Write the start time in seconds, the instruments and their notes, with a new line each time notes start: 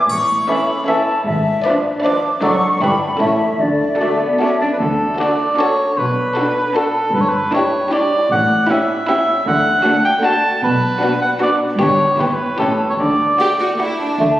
0.09 double bass section A1, cello section A2, flute C#6, triangle
0.48 bassoon E3, viola section C#4, violin section A4 E5, clarinet A4, cor anglais E5, flute B5
0.87 bassoon E3, viola section C#4, violin section A4 E5, clarinet A4, cor anglais E5, flute A5
1.25 double bass section G#1, cello section G#2, flute E5
1.64 bassoon F3, viola section D4, violin section B4 D5, clarinet B4, cor anglais D5
2.02 bassoon F3, viola section D4, violin section B4 D5, clarinet B4, cor anglais D5, flute D6
2.42 double bass section F#1, cello section F#2, bassoon F#3, viola section D4, clarinet A4, violin section A4 D5, cor anglais D5, flute C#6
2.81 double bass section G1, cello section G2, bassoon G3, viola section D4, violin section E4 B4, clarinet E4, cor anglais D5, flute B5
3.19 double bass section A1, cello section A2, bassoon A3, viola section C#4, clarinet E4, violin section E4 A4, cor anglais C#5, flute E5
3.60 double bass section D2, cello section D3, flute D5
3.98 cello section A3, bassoon A3, viola section D4, violin section F#4 A4, clarinet F#4, cor anglais D5
4.20 cello section B3
4.39 bassoon A3, cello section C#4, viola section D4, violin section F#4 A4, clarinet F#4, cor anglais D5
4.61 cello section D4
4.72 cor anglais B4
4.79 double bass section D2, cello section D3, cor anglais A4
5.18 viola section D4, violin section F#4 A4, cor anglais D5
5.57 viola section D4, violin section F#4 A4, cor anglais C#5
5.98 double bass section B1, cello section B2, cor anglais B4
6.36 viola section D4, violin section F#4 A4
6.75 viola section D4, violin section F#4 A4, cor anglais A4
7.14 double bass section G1, cello section G2, cor anglais B4
7.21 cor anglais C#5
7.28 cor anglais B4
7.52 viola section D4, violin section E4 G4, cor anglais C#5
7.92 viola section D4, violin section E4 G4, cor anglais D5
8.31 double bass section A1, cello section A2, cor anglais F#5
8.69 viola section C#4, violin section E4 G4, cor anglais E5
9.08 viola section C#4, violin section E4 G4, cor anglais E5
9.46 double bass section D2, cello section D3, cor anglais F#5
9.84 viola section A3, violin section D4 F#4
10.05 cor anglais G5
10.23 viola section A3, violin section D4 F#4, cor anglais A5
10.62 double bass section B1, cello section B2, cor anglais B4
11.02 viola section B3, violin section D4 F#4
11.22 cor anglais F#5
11.40 viola section B3, violin section D4 F#4, cor anglais D5
11.79 double bass section G1, cello section G2, viola section B3, violin section D4 G4, cor anglais C#5
12.19 double bass section G1, cello section G2, viola section B3, violin section E4 G4, cor anglais B4
12.28 cor anglais C#5
12.34 cor anglais B4
12.59 double bass section A1, cello section A2, viola section C#4, violin section E4 G4, cor anglais A4
12.90 cor anglais C#5
12.99 double bass section D2, cello section D3, cor anglais D5
13.39 viola section A3, violin section F#4 G4
13.60 violin section F#4
13.79 viola section A3, violin section E4 F#4
14.00 violin section D4
14.20 double bass section D2, cello section D3, bassoon A3